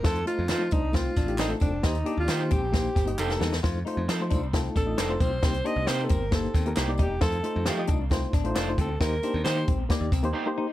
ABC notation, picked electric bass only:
X:1
M:4/4
L:1/16
Q:1/4=134
K:Fmix
V:1 name="Picked electric bass" clef=bass
F,,2 z F,, F,2 C,,4 A,,,4 F,,,2 | E,,2 z E,, E,2 B,,,4 G,,,2 F,,,2 =E,,2 | F,,2 z F,, F,2 C,,4 A,,,2 F,,,2 =B,,,2 | C,,2 z C,, C,2 G,,,4 E,,2 C,,2 =E,,,2 |
F,,2 z F,, F,2 C,,4 A,,,2 F,,,2 D,,2 | E,,2 z E,, E,2 B,,,2 z E,, C,, E,, z4 |]